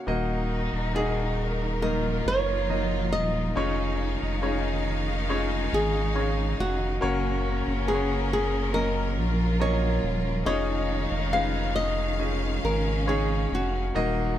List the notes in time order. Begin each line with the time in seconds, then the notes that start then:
Already playing: F#4
0.07 D#1 A#2 D#3 A#3 D#4 F#4 A#4 D#5
0.73 D#1
0.94 A#3 D#4 F#4 G#4 A#4 D#5
1.82 F3 F#3 A#3 D#4 F4 A#4 D#5
2.26 F#1 C#5
2.69 F#3 A#3 D#4 A#4 D#5
3.12 D#1 D#5
3.55 F1 C#3 D#3 G#3 C#4 D#4 F4 G#4 C#5 F5
4.22 F1
4.42 C#4 D#4 F4 G#4 C#5
5.29 C#4 D#4 F4 G#4 C#5
5.73 G#1 G#4
6.14 C#4 D#4 G#4 C#5 F5
6.59 F1 F#4
7.01 F#1 A#2 C#3 A#3 C#4 F#4 A#4 C#5
7.67 F#1
7.87 A#3 C#4 F#4 G#4 A#4 B4
7.95 C#5
8.33 G#4
8.73 F#3 A#3 C#4 A#4 D#5
9.16 A#1 F3 F4
9.59 F#3 A#3 C#4 A#4 C#5 D#5
10.03 D#1
10.45 F1 C#3 D#3 G#3 C#4 D#4 F4 G#4 C#5 D#5 F5
11.11 F1
11.33 C#4 D#4 F4 G#4 B4 F5
11.76 D#5
12.19 C#3 C#4 D#4 F4 G#4 D#5
12.64 G#1 A#4
13.06 C#4 D#4 G#4 C#5 F5
13.52 F1 F#4
13.93 D#1 A#2 D#3 F#3 A#3 D#4 F#4 A#4 D#5